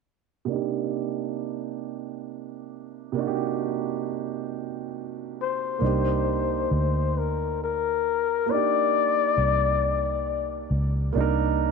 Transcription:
0.45 grand piano C3 A#3 D4
0.51 grand piano D#4 G4
3.12 grand piano C3 A#3
3.16 grand piano D4 D#4
3.20 grand piano F#4
3.27 grand piano G4
5.41 flugelhorn C5
5.79 fingered electric bass C2, grand piano A#3 D4
5.84 grand piano D#4 G4
6.71 fingered electric bass D2
7.18 flugelhorn A#4
7.64 flugelhorn A#4
8.46 fingered electric bass C2, grand piano A#3 D4
8.51 grand piano D#4 G4, flugelhorn D5
9.38 fingered electric bass C2
10.71 fingered electric bass C#2
11.12 fingered electric bass C2, grand piano A#3 D4
11.18 grand piano D#4 A#4

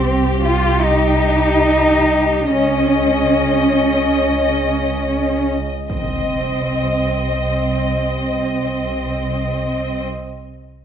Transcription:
Already playing: double bass section C2, cello section C4, violin section G4, impact
0.41 cello section F4
0.82 cello section D#4
2.51 double bass section C#2, cello section C#4, violin section D#5
5.90 double bass section C2, cello section C4, violin section D#5, impact

